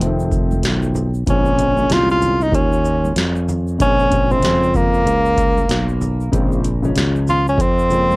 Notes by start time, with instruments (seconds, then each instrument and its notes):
0.00 fretless electric bass F1, upright piano D#3 F3 A3 C4, closed hi-hat, shaker
0.20 shaker
0.32 kick, shaker
0.51 high conga, shaker
0.63 fretless electric bass B1, snare, closed hi-hat, shaker
0.82 shaker
0.95 low conga, shaker
1.14 shaker
1.26 fretless electric bass A#1, upright piano C#3 F3 G#3 C4, tenor saxophone C#4, kick, closed hi-hat, shaker
1.46 shaker
1.58 upright piano C#3 F3 G#3 C4, closed hi-hat, shaker
1.76 upright piano A#2 F3 G#3 C#4, shaker
1.90 fretless electric bass C2, tenor saxophone F4, snare, closed hi-hat, low conga, shaker
2.10 tenor saxophone F4, shaker
2.22 low conga, shaker
2.41 tenor saxophone D#4, shaker
2.52 fretless electric bass D#2, tenor saxophone C#4, kick, closed hi-hat, shaker
2.73 shaker
2.85 shaker
3.05 high conga, shaker
3.16 fretless electric bass F2, snare, closed hi-hat, shaker
3.36 shaker
3.49 low conga, shaker
3.67 shaker
3.78 fretless electric bass A#1, upright piano C#3 F3 G#3 C4, tenor saxophone C#4, kick, closed hi-hat, shaker
3.99 shaker
4.10 upright piano C#3 F3 G#3 C4, kick, closed hi-hat, shaker
4.30 upright piano C3 F3 G#3 C4, tenor saxophone C4, shaker
4.36 upright piano C#3
4.43 fretless electric bass F2, snare, closed hi-hat, low conga, shaker
4.63 shaker
4.74 tenor saxophone A#3, kick, low conga, shaker
4.76 shaker
4.94 shaker
5.06 fretless electric bass C#2, closed hi-hat, shaker
5.25 shaker
5.37 kick, closed hi-hat, shaker
5.58 high conga, shaker
5.69 fretless electric bass B1, snare, closed hi-hat, shaker
5.89 shaker
6.01 low conga, shaker
6.21 shaker
6.32 fretless electric bass A#1, upright piano C#3 F3 G#3 C4, kick, closed hi-hat, shaker
6.52 shaker
6.64 closed hi-hat, shaker
6.82 upright piano C#3 F3 G#3 C#4, shaker
6.96 fretless electric bass C#2, snare, closed hi-hat, low conga, shaker
7.16 shaker
7.27 tenor saxophone F4, low conga, shaker
7.47 tenor saxophone C#4, shaker
7.58 fretless electric bass F2, tenor saxophone C4, kick, closed hi-hat, shaker
7.79 shaker
7.89 upright piano C#3 F3 G#3 A#3, shaker
7.92 shaker
8.11 high conga, shaker